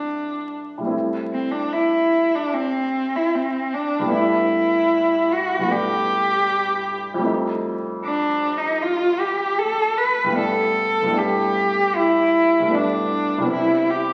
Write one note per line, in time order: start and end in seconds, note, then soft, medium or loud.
0.00 0.81 C2 soft
0.00 0.79 G3 soft
0.00 0.53 D4 medium
0.00 0.84 D4 soft
0.00 0.86 E4 soft
0.78 4.02 A2 soft
0.78 4.01 G3 soft
0.84 4.04 A3 soft
0.84 4.07 C4 soft
0.90 4.08 E4 soft
1.33 1.53 C4 medium
1.52 1.74 D4 medium
1.73 2.36 E4 medium
2.35 2.55 D4 medium
2.54 3.17 C4 medium
3.16 3.36 E4 medium
3.35 3.76 C4 medium
3.74 4.13 D4 medium
3.99 5.57 G2 soft
3.99 5.60 G3 soft
4.05 5.63 A3 soft
4.05 5.65 B3 soft
4.10 5.67 D4 soft
4.10 5.35 E4 medium
5.33 5.73 F#4 medium
5.59 7.17 G2 soft
5.59 7.16 G3 soft
5.65 7.18 A3 soft
5.65 7.22 B3 soft
5.70 7.23 D4 soft
5.70 7.28 G4 medium
7.14 10.28 F2 soft
7.14 10.25 G3 soft
7.20 10.28 A3 soft
7.20 10.32 C4 soft
7.26 10.34 D#4 soft
8.06 8.59 D4 medium
8.57 8.84 D#4 medium
8.82 9.22 F4 medium
9.20 9.60 G4 medium
9.59 9.99 A4 medium
9.97 10.37 B4 medium
10.24 11.01 G2 soft
10.24 11.04 G3 soft
10.30 11.07 A3 soft
10.30 11.10 B3 soft
10.35 11.13 D4 soft
10.35 11.19 A4 medium
11.02 12.58 G2 soft
11.02 12.61 G3 soft
11.09 12.64 A3 soft
11.09 12.67 B3 soft
11.14 12.69 D4 soft
11.14 11.97 G4 medium
11.95 12.76 E4 medium
12.60 13.41 G2 soft
12.60 13.39 G3 soft
12.65 13.44 A3 soft
12.65 13.42 B3 soft
12.71 13.47 D4 soft
12.71 13.51 D4 medium
13.38 14.13 C2 soft
13.38 14.13 G3 soft
13.43 14.13 B3 soft
13.43 14.13 C4 soft
13.48 14.13 E4 soft
13.53 13.92 E4 medium
13.90 14.13 G4 medium